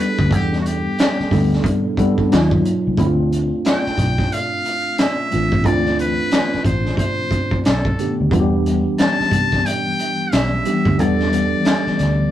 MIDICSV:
0, 0, Header, 1, 6, 480
1, 0, Start_track
1, 0, Tempo, 666667
1, 222, Time_signature, 4, 2, 24, 8
1, 8865, End_track
2, 0, Start_track
2, 0, Title_t, "Muted trumpet"
2, 0, Program_c, 0, 59
2, 0, Note_on_c, 0, 71, 94
2, 230, Note_off_c, 0, 71, 0
2, 246, Note_on_c, 0, 67, 90
2, 422, Note_off_c, 0, 67, 0
2, 434, Note_on_c, 0, 66, 63
2, 477, Note_on_c, 0, 67, 86
2, 487, Note_off_c, 0, 66, 0
2, 1189, Note_off_c, 0, 67, 0
2, 2640, Note_on_c, 0, 79, 96
2, 3116, Note_on_c, 0, 77, 102
2, 3127, Note_off_c, 0, 79, 0
2, 3595, Note_on_c, 0, 76, 95
2, 3606, Note_off_c, 0, 77, 0
2, 4076, Note_on_c, 0, 74, 95
2, 4087, Note_off_c, 0, 76, 0
2, 4309, Note_off_c, 0, 74, 0
2, 4320, Note_on_c, 0, 71, 100
2, 4762, Note_off_c, 0, 71, 0
2, 4791, Note_on_c, 0, 72, 86
2, 5010, Note_off_c, 0, 72, 0
2, 5032, Note_on_c, 0, 72, 92
2, 5478, Note_off_c, 0, 72, 0
2, 5519, Note_on_c, 0, 69, 71
2, 5871, Note_off_c, 0, 69, 0
2, 6474, Note_on_c, 0, 81, 102
2, 6954, Note_on_c, 0, 79, 105
2, 6965, Note_off_c, 0, 81, 0
2, 7436, Note_on_c, 0, 76, 92
2, 7447, Note_off_c, 0, 79, 0
2, 7917, Note_on_c, 0, 74, 91
2, 7928, Note_off_c, 0, 76, 0
2, 8865, Note_off_c, 0, 74, 0
2, 8865, End_track
3, 0, Start_track
3, 0, Title_t, "Tine electric piano"
3, 0, Program_c, 1, 4
3, 0, Control_c, 1, 64, 127
3, 0, Note_on_c, 1, 55, 73
3, 0, Note_on_c, 1, 59, 67
3, 0, Note_on_c, 1, 62, 74
3, 0, Note_on_c, 1, 64, 67
3, 0, Note_on_c, 1, 68, 65
3, 0, Note_on_c, 1, 69, 87
3, 388, Note_off_c, 1, 55, 0
3, 390, Note_off_c, 1, 59, 0
3, 391, Note_off_c, 1, 62, 0
3, 393, Note_off_c, 1, 64, 0
3, 419, Note_off_c, 1, 69, 0
3, 942, Note_on_c, 1, 55, 75
3, 948, Note_on_c, 1, 59, 71
3, 951, Note_on_c, 1, 62, 72
3, 955, Note_on_c, 1, 64, 63
3, 959, Note_on_c, 1, 69, 76
3, 1384, Note_off_c, 1, 55, 0
3, 1387, Note_off_c, 1, 59, 0
3, 1388, Note_off_c, 1, 62, 0
3, 1391, Note_off_c, 1, 64, 0
3, 1393, Note_off_c, 1, 69, 0
3, 1424, Note_on_c, 1, 55, 90
3, 1427, Note_on_c, 1, 59, 86
3, 1432, Note_on_c, 1, 62, 89
3, 1436, Note_on_c, 1, 64, 79
3, 1439, Note_on_c, 1, 69, 92
3, 1663, Note_off_c, 1, 55, 0
3, 1664, Note_on_c, 1, 54, 93
3, 1665, Note_off_c, 1, 59, 0
3, 1667, Note_off_c, 1, 62, 0
3, 1667, Note_on_c, 1, 58, 83
3, 1669, Note_off_c, 1, 64, 0
3, 1671, Note_off_c, 1, 69, 0
3, 1672, Note_on_c, 1, 61, 85
3, 1673, Control_c, 1, 64, 0
3, 1674, Note_on_c, 1, 63, 89
3, 1678, Note_on_c, 1, 65, 103
3, 1679, Note_off_c, 1, 68, 0
3, 1798, Control_c, 1, 64, 127
3, 2105, Note_off_c, 1, 54, 0
3, 2106, Note_off_c, 1, 58, 0
3, 2109, Note_off_c, 1, 61, 0
3, 2110, Note_off_c, 1, 63, 0
3, 2112, Note_off_c, 1, 65, 0
3, 2145, Note_on_c, 1, 64, 97
3, 2149, Note_on_c, 1, 57, 99
3, 2152, Control_c, 1, 64, 0
3, 2153, Note_on_c, 1, 60, 93
3, 2156, Note_on_c, 1, 62, 93
3, 2159, Note_off_c, 1, 64, 0
3, 2160, Note_on_c, 1, 64, 86
3, 2207, Note_on_c, 1, 65, 112
3, 2208, Note_off_c, 1, 64, 0
3, 2256, Control_c, 1, 64, 127
3, 3030, Note_off_c, 1, 57, 0
3, 3031, Note_off_c, 1, 60, 0
3, 3033, Note_off_c, 1, 62, 0
3, 3058, Note_off_c, 1, 65, 0
3, 3821, Note_on_c, 1, 52, 65
3, 3827, Note_on_c, 1, 57, 59
3, 3829, Note_on_c, 1, 60, 63
3, 3833, Note_on_c, 1, 62, 60
3, 3838, Note_on_c, 1, 65, 78
3, 4043, Note_off_c, 1, 52, 0
3, 4045, Note_off_c, 1, 57, 0
3, 4047, Note_off_c, 1, 60, 0
3, 4049, Note_off_c, 1, 62, 0
3, 4051, Note_off_c, 1, 65, 0
3, 4061, Note_on_c, 1, 64, 78
3, 4064, Note_on_c, 1, 57, 84
3, 4068, Note_on_c, 1, 60, 81
3, 4073, Note_on_c, 1, 62, 73
3, 4075, Note_on_c, 1, 65, 97
3, 4945, Note_off_c, 1, 64, 0
3, 4947, Note_off_c, 1, 57, 0
3, 4949, Note_off_c, 1, 60, 0
3, 4951, Note_off_c, 1, 62, 0
3, 4953, Note_off_c, 1, 65, 0
3, 5512, Control_c, 1, 64, 0
3, 5641, Control_c, 1, 64, 127
3, 5747, Note_on_c, 1, 51, 62
3, 5750, Note_on_c, 1, 57, 59
3, 5755, Note_on_c, 1, 59, 63
3, 5757, Note_on_c, 1, 62, 63
3, 5762, Note_on_c, 1, 67, 70
3, 5965, Note_off_c, 1, 51, 0
3, 5967, Note_off_c, 1, 57, 0
3, 5969, Note_off_c, 1, 59, 0
3, 5971, Note_off_c, 1, 62, 0
3, 5973, Note_off_c, 1, 67, 0
3, 5985, Note_on_c, 1, 52, 104
3, 5989, Note_on_c, 1, 55, 92
3, 5990, Control_c, 1, 64, 0
3, 5992, Note_on_c, 1, 59, 93
3, 5998, Note_on_c, 1, 62, 96
3, 6000, Note_on_c, 1, 65, 94
3, 6046, Note_on_c, 1, 67, 118
3, 6048, Note_off_c, 1, 65, 0
3, 6141, Control_c, 1, 64, 127
3, 6867, Note_off_c, 1, 52, 0
3, 6870, Note_off_c, 1, 55, 0
3, 6871, Note_off_c, 1, 59, 0
3, 6874, Note_off_c, 1, 62, 0
3, 6898, Note_off_c, 1, 67, 0
3, 7662, Note_on_c, 1, 52, 72
3, 7666, Note_on_c, 1, 55, 62
3, 7671, Note_on_c, 1, 59, 64
3, 7675, Note_on_c, 1, 62, 64
3, 7677, Note_on_c, 1, 67, 79
3, 7883, Note_off_c, 1, 52, 0
3, 7885, Note_off_c, 1, 55, 0
3, 7888, Note_off_c, 1, 59, 0
3, 7890, Note_off_c, 1, 62, 0
3, 7891, Note_off_c, 1, 67, 0
3, 7902, Note_on_c, 1, 52, 84
3, 7905, Note_on_c, 1, 55, 76
3, 7910, Note_on_c, 1, 59, 76
3, 7913, Note_on_c, 1, 62, 80
3, 7917, Note_on_c, 1, 69, 105
3, 8786, Note_off_c, 1, 52, 0
3, 8787, Note_off_c, 1, 55, 0
3, 8790, Note_off_c, 1, 59, 0
3, 8792, Note_off_c, 1, 62, 0
3, 8793, Note_off_c, 1, 69, 0
3, 8865, End_track
4, 0, Start_track
4, 0, Title_t, "Fingered electric bass"
4, 0, Program_c, 2, 33
4, 143, Note_on_c, 2, 38, 90
4, 231, Note_off_c, 2, 38, 0
4, 231, Note_on_c, 2, 40, 106
4, 606, Note_off_c, 2, 40, 0
4, 953, Note_on_c, 2, 38, 77
4, 1138, Note_off_c, 2, 38, 0
4, 1679, Note_on_c, 2, 39, 110
4, 1862, Note_off_c, 2, 39, 0
4, 2065, Note_on_c, 2, 36, 93
4, 2132, Note_off_c, 2, 36, 0
4, 2150, Note_on_c, 2, 38, 88
4, 2525, Note_off_c, 2, 38, 0
4, 2872, Note_on_c, 2, 35, 76
4, 3057, Note_off_c, 2, 35, 0
4, 3839, Note_on_c, 2, 33, 83
4, 4070, Note_off_c, 2, 33, 0
4, 4070, Note_on_c, 2, 38, 95
4, 4445, Note_off_c, 2, 38, 0
4, 4792, Note_on_c, 2, 33, 78
4, 4978, Note_off_c, 2, 33, 0
4, 5522, Note_on_c, 2, 35, 86
4, 5703, Note_off_c, 2, 35, 0
4, 5908, Note_on_c, 2, 38, 80
4, 5974, Note_off_c, 2, 38, 0
4, 5993, Note_on_c, 2, 40, 96
4, 6367, Note_off_c, 2, 40, 0
4, 6713, Note_on_c, 2, 36, 73
4, 6898, Note_off_c, 2, 36, 0
4, 7439, Note_on_c, 2, 35, 87
4, 7621, Note_off_c, 2, 35, 0
4, 7823, Note_on_c, 2, 38, 78
4, 7918, Note_off_c, 2, 38, 0
4, 7918, Note_on_c, 2, 40, 97
4, 8290, Note_off_c, 2, 40, 0
4, 8638, Note_on_c, 2, 38, 78
4, 8821, Note_off_c, 2, 38, 0
4, 8865, End_track
5, 0, Start_track
5, 0, Title_t, "Muted fingered electric bass strokes"
5, 864, Note_on_c, 9, 29, 45
5, 936, Note_off_c, 9, 29, 0
5, 2786, Note_on_c, 9, 29, 42
5, 2858, Note_off_c, 9, 29, 0
5, 4709, Note_on_c, 9, 29, 42
5, 4781, Note_off_c, 9, 29, 0
5, 6626, Note_on_c, 9, 29, 43
5, 6698, Note_off_c, 9, 29, 0
5, 8546, Note_on_c, 9, 29, 39
5, 8618, Note_off_c, 9, 29, 0
5, 8865, End_track
6, 0, Start_track
6, 0, Title_t, "Drums"
6, 134, Note_on_c, 9, 36, 92
6, 206, Note_off_c, 9, 36, 0
6, 221, Note_on_c, 9, 36, 96
6, 232, Note_on_c, 9, 42, 69
6, 293, Note_off_c, 9, 36, 0
6, 304, Note_off_c, 9, 42, 0
6, 379, Note_on_c, 9, 38, 36
6, 451, Note_off_c, 9, 38, 0
6, 474, Note_on_c, 9, 42, 57
6, 546, Note_off_c, 9, 42, 0
6, 710, Note_on_c, 9, 42, 68
6, 720, Note_on_c, 9, 38, 113
6, 726, Note_on_c, 9, 39, 97
6, 782, Note_off_c, 9, 42, 0
6, 792, Note_off_c, 9, 38, 0
6, 798, Note_off_c, 9, 39, 0
6, 864, Note_on_c, 9, 38, 33
6, 936, Note_off_c, 9, 38, 0
6, 945, Note_on_c, 9, 36, 90
6, 950, Note_on_c, 9, 38, 33
6, 954, Note_on_c, 9, 46, 48
6, 1017, Note_off_c, 9, 36, 0
6, 1022, Note_off_c, 9, 38, 0
6, 1026, Note_off_c, 9, 46, 0
6, 1101, Note_on_c, 9, 38, 33
6, 1173, Note_off_c, 9, 38, 0
6, 1180, Note_on_c, 9, 36, 99
6, 1195, Note_on_c, 9, 42, 92
6, 1252, Note_off_c, 9, 36, 0
6, 1267, Note_off_c, 9, 42, 0
6, 1421, Note_on_c, 9, 36, 93
6, 1432, Note_on_c, 9, 42, 59
6, 1493, Note_off_c, 9, 36, 0
6, 1504, Note_off_c, 9, 42, 0
6, 1569, Note_on_c, 9, 36, 81
6, 1641, Note_off_c, 9, 36, 0
6, 1671, Note_on_c, 9, 42, 83
6, 1676, Note_on_c, 9, 38, 100
6, 1682, Note_on_c, 9, 39, 81
6, 1743, Note_off_c, 9, 42, 0
6, 1748, Note_off_c, 9, 38, 0
6, 1754, Note_off_c, 9, 39, 0
6, 1810, Note_on_c, 9, 36, 91
6, 1882, Note_off_c, 9, 36, 0
6, 1911, Note_on_c, 9, 42, 60
6, 1983, Note_off_c, 9, 42, 0
6, 2142, Note_on_c, 9, 36, 102
6, 2153, Note_on_c, 9, 42, 65
6, 2214, Note_off_c, 9, 36, 0
6, 2225, Note_off_c, 9, 42, 0
6, 2394, Note_on_c, 9, 42, 58
6, 2466, Note_off_c, 9, 42, 0
6, 2627, Note_on_c, 9, 42, 68
6, 2637, Note_on_c, 9, 38, 100
6, 2643, Note_on_c, 9, 39, 94
6, 2699, Note_off_c, 9, 42, 0
6, 2709, Note_off_c, 9, 38, 0
6, 2715, Note_off_c, 9, 39, 0
6, 2779, Note_on_c, 9, 38, 31
6, 2851, Note_off_c, 9, 38, 0
6, 2863, Note_on_c, 9, 36, 82
6, 2866, Note_on_c, 9, 38, 29
6, 2870, Note_on_c, 9, 42, 64
6, 2935, Note_off_c, 9, 36, 0
6, 2938, Note_off_c, 9, 38, 0
6, 2942, Note_off_c, 9, 42, 0
6, 3012, Note_on_c, 9, 36, 80
6, 3015, Note_on_c, 9, 38, 32
6, 3084, Note_off_c, 9, 36, 0
6, 3087, Note_off_c, 9, 38, 0
6, 3112, Note_on_c, 9, 42, 85
6, 3184, Note_off_c, 9, 42, 0
6, 3349, Note_on_c, 9, 42, 50
6, 3421, Note_off_c, 9, 42, 0
6, 3587, Note_on_c, 9, 42, 80
6, 3592, Note_on_c, 9, 38, 95
6, 3598, Note_on_c, 9, 39, 70
6, 3659, Note_off_c, 9, 42, 0
6, 3664, Note_off_c, 9, 38, 0
6, 3670, Note_off_c, 9, 39, 0
6, 3827, Note_on_c, 9, 42, 53
6, 3899, Note_off_c, 9, 42, 0
6, 3974, Note_on_c, 9, 36, 86
6, 4046, Note_off_c, 9, 36, 0
6, 4061, Note_on_c, 9, 36, 95
6, 4071, Note_on_c, 9, 42, 68
6, 4133, Note_off_c, 9, 36, 0
6, 4143, Note_off_c, 9, 42, 0
6, 4216, Note_on_c, 9, 38, 30
6, 4288, Note_off_c, 9, 38, 0
6, 4313, Note_on_c, 9, 42, 59
6, 4385, Note_off_c, 9, 42, 0
6, 4545, Note_on_c, 9, 42, 68
6, 4555, Note_on_c, 9, 38, 103
6, 4561, Note_on_c, 9, 39, 83
6, 4617, Note_off_c, 9, 42, 0
6, 4627, Note_off_c, 9, 38, 0
6, 4633, Note_off_c, 9, 39, 0
6, 4699, Note_on_c, 9, 38, 30
6, 4771, Note_off_c, 9, 38, 0
6, 4784, Note_on_c, 9, 36, 87
6, 4790, Note_on_c, 9, 42, 63
6, 4856, Note_off_c, 9, 36, 0
6, 4862, Note_off_c, 9, 42, 0
6, 4936, Note_on_c, 9, 38, 33
6, 5008, Note_off_c, 9, 38, 0
6, 5020, Note_on_c, 9, 36, 86
6, 5033, Note_on_c, 9, 42, 83
6, 5092, Note_off_c, 9, 36, 0
6, 5105, Note_off_c, 9, 42, 0
6, 5261, Note_on_c, 9, 36, 87
6, 5270, Note_on_c, 9, 42, 52
6, 5333, Note_off_c, 9, 36, 0
6, 5342, Note_off_c, 9, 42, 0
6, 5410, Note_on_c, 9, 36, 83
6, 5482, Note_off_c, 9, 36, 0
6, 5509, Note_on_c, 9, 42, 78
6, 5514, Note_on_c, 9, 38, 100
6, 5520, Note_on_c, 9, 39, 76
6, 5581, Note_off_c, 9, 42, 0
6, 5586, Note_off_c, 9, 38, 0
6, 5592, Note_off_c, 9, 39, 0
6, 5652, Note_on_c, 9, 36, 88
6, 5724, Note_off_c, 9, 36, 0
6, 5751, Note_on_c, 9, 42, 55
6, 5823, Note_off_c, 9, 42, 0
6, 5984, Note_on_c, 9, 36, 108
6, 5996, Note_on_c, 9, 42, 69
6, 6056, Note_off_c, 9, 36, 0
6, 6068, Note_off_c, 9, 42, 0
6, 6236, Note_on_c, 9, 42, 61
6, 6308, Note_off_c, 9, 42, 0
6, 6468, Note_on_c, 9, 42, 74
6, 6478, Note_on_c, 9, 38, 116
6, 6484, Note_on_c, 9, 39, 91
6, 6540, Note_off_c, 9, 42, 0
6, 6550, Note_off_c, 9, 38, 0
6, 6556, Note_off_c, 9, 39, 0
6, 6624, Note_on_c, 9, 38, 30
6, 6696, Note_off_c, 9, 38, 0
6, 6707, Note_on_c, 9, 36, 83
6, 6715, Note_on_c, 9, 42, 66
6, 6779, Note_off_c, 9, 36, 0
6, 6787, Note_off_c, 9, 42, 0
6, 6856, Note_on_c, 9, 36, 76
6, 6860, Note_on_c, 9, 38, 36
6, 6928, Note_off_c, 9, 36, 0
6, 6932, Note_off_c, 9, 38, 0
6, 6955, Note_on_c, 9, 42, 95
6, 7027, Note_off_c, 9, 42, 0
6, 7194, Note_on_c, 9, 42, 53
6, 7266, Note_off_c, 9, 42, 0
6, 7432, Note_on_c, 9, 42, 83
6, 7437, Note_on_c, 9, 38, 88
6, 7443, Note_on_c, 9, 39, 74
6, 7504, Note_off_c, 9, 42, 0
6, 7509, Note_off_c, 9, 38, 0
6, 7515, Note_off_c, 9, 39, 0
6, 7670, Note_on_c, 9, 42, 57
6, 7742, Note_off_c, 9, 42, 0
6, 7815, Note_on_c, 9, 36, 93
6, 7887, Note_off_c, 9, 36, 0
6, 7913, Note_on_c, 9, 42, 69
6, 7985, Note_off_c, 9, 42, 0
6, 8061, Note_on_c, 9, 38, 30
6, 8133, Note_off_c, 9, 38, 0
6, 8156, Note_on_c, 9, 42, 55
6, 8228, Note_off_c, 9, 42, 0
6, 8388, Note_on_c, 9, 42, 72
6, 8398, Note_on_c, 9, 38, 112
6, 8404, Note_on_c, 9, 39, 88
6, 8460, Note_off_c, 9, 42, 0
6, 8470, Note_off_c, 9, 38, 0
6, 8476, Note_off_c, 9, 39, 0
6, 8541, Note_on_c, 9, 38, 28
6, 8613, Note_off_c, 9, 38, 0
6, 8629, Note_on_c, 9, 38, 32
6, 8633, Note_on_c, 9, 42, 63
6, 8701, Note_off_c, 9, 38, 0
6, 8705, Note_off_c, 9, 42, 0
6, 8865, End_track
0, 0, End_of_file